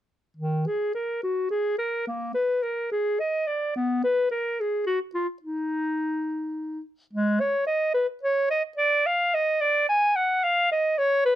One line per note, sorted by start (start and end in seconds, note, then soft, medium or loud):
0.37 0.68 D#3 medium
0.67 0.94 G#4 medium
0.95 1.22 A#4 soft
1.23 1.49 F#4 soft
1.50 1.78 G#4 medium
1.78 2.06 A#4 soft
2.07 2.33 A#3 medium
2.34 2.64 B4 medium
2.62 2.91 A#4 soft
2.91 3.21 G#4 medium
3.19 3.49 D#5 medium
3.47 3.75 D5 soft
3.76 4.03 B3 medium
4.04 4.30 B4 medium
4.31 4.62 A#4 medium
4.60 4.86 G#4 soft
4.86 4.99 F#4 medium
5.14 5.27 F4 medium
5.42 6.80 D#4 medium
7.13 7.42 G#3 medium
7.40 7.66 C#5 medium
7.67 7.93 D#5 medium
7.94 8.06 B4 medium
8.23 8.50 C#5 medium
8.50 8.63 D#5 medium
8.77 9.08 D5 medium
9.06 9.36 F5 medium
9.34 9.63 D#5 medium
9.61 9.88 D5 medium
9.89 10.17 G#5 medium
10.16 10.45 F#5 medium
10.44 10.71 F5 medium
10.72 11.00 D#5 medium
10.98 11.25 C#5 medium
11.25 11.35 B4 medium